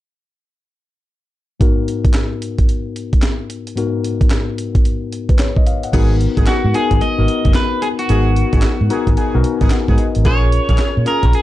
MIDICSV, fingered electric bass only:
0, 0, Header, 1, 3, 480
1, 0, Start_track
1, 0, Tempo, 540541
1, 1428, Time_signature, 4, 2, 24, 8
1, 10141, End_track
2, 0, Start_track
2, 0, Title_t, "Fingered electric bass"
2, 0, Program_c, 0, 33
2, 5272, Note_on_c, 0, 32, 108
2, 5555, Note_off_c, 0, 32, 0
2, 5660, Note_on_c, 0, 32, 84
2, 5725, Note_off_c, 0, 32, 0
2, 5901, Note_on_c, 0, 44, 101
2, 5965, Note_off_c, 0, 44, 0
2, 6138, Note_on_c, 0, 32, 78
2, 6204, Note_off_c, 0, 32, 0
2, 6380, Note_on_c, 0, 32, 88
2, 6445, Note_off_c, 0, 32, 0
2, 6618, Note_on_c, 0, 30, 95
2, 6684, Note_off_c, 0, 30, 0
2, 7190, Note_on_c, 0, 32, 102
2, 7474, Note_off_c, 0, 32, 0
2, 7577, Note_on_c, 0, 32, 84
2, 7643, Note_off_c, 0, 32, 0
2, 7822, Note_on_c, 0, 44, 96
2, 7886, Note_off_c, 0, 44, 0
2, 8057, Note_on_c, 0, 32, 77
2, 8123, Note_off_c, 0, 32, 0
2, 8301, Note_on_c, 0, 35, 98
2, 8365, Note_off_c, 0, 35, 0
2, 8537, Note_on_c, 0, 32, 85
2, 8603, Note_off_c, 0, 32, 0
2, 8779, Note_on_c, 0, 44, 93
2, 8844, Note_off_c, 0, 44, 0
2, 9024, Note_on_c, 0, 32, 85
2, 9107, Note_off_c, 0, 32, 0
2, 9107, Note_on_c, 0, 34, 93
2, 9392, Note_off_c, 0, 34, 0
2, 9495, Note_on_c, 0, 34, 90
2, 9562, Note_off_c, 0, 34, 0
2, 9743, Note_on_c, 0, 46, 98
2, 9806, Note_off_c, 0, 46, 0
2, 9976, Note_on_c, 0, 34, 86
2, 10042, Note_off_c, 0, 34, 0
2, 10141, End_track
3, 0, Start_track
3, 0, Title_t, "Muted fingered electric bass strokes"
3, 5751, Note_on_c, 9, 29, 47
3, 5839, Note_off_c, 9, 29, 0
3, 7671, Note_on_c, 9, 29, 49
3, 7760, Note_off_c, 9, 29, 0
3, 10141, End_track
0, 0, End_of_file